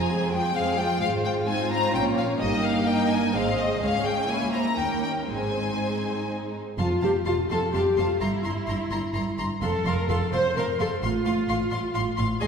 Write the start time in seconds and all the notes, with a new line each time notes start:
Already playing: F3 F4 G#5
0.09 F2 G#3 C4 G#4 C5
0.32 F3 G#3 F4 G#4 G5
0.55 F2 G#3 C4 G#4 C5 F5
0.77 F3 G#3 F4 G#4 G5
1.01 G#1 G#2 G#3 F4 C5 F5
1.25 G5
1.47 C4 D#4 C5 G#5
1.71 A#5
1.94 A#1 A#2 A#3 C#4 C#5 G5
2.18 F5
2.40 G1 G2 A#3 D#4 G4 A#4 D#5
2.63 F5
2.86 A#4 D#5 G5
3.10 G#5
3.33 G#1 G#2 G#3 C4 C5 D#5 F5
3.58 D#5
3.81 C#2 G#3 C#4 G#4 C#5 F5
4.05 G5
4.28 A#3 C#4 E4 C#5 G#5
4.51 C5 A#5
4.76 D#2 A#3 C#4 D#4 A#4 G5
5.03 G5
5.27 G#1 G#2 G#3 C4 D#4 C5 G#5
6.78 F1 F2 F4 F5 A5 C6
7.01 F1 F2 G4 F5 A5 C6
7.25 F1 F2 F4 F5 A5 C6
7.49 F1 F2 A4 F5 A5 C6
7.73 F1 F2 G4 F5 A5 C6
7.97 F1 F2 F4 F5 A5 C6
8.20 G1 G2 E4 A#5 C6
8.44 G1 G2 A#5 C6
8.66 G1 G2 A#5 C6
8.91 G1 G2 A#5 C6
9.13 G1 G2 A#5 C6
9.38 G1 G2 A#5 C6
9.61 F1 F2 A4 F5 C6
9.85 F1 F2 A#4 F5 C6
10.09 F1 F2 A4 F5 C6
10.32 F1 F2 C5 F5 C6
10.56 F1 F2 A#4 F5 C6
10.80 F1 F2 A4 F5 C6
11.02 A1 A2 F4 F5 C6
11.26 A1 A2 F5 C6
11.49 A1 A2 F5 C6
11.70 A1 A2 F5 C6
11.94 A1 A2 F5 C6
12.17 A1 A2 F5 C6
12.41 G#1 G#2 G#4 D#5 G#5 C6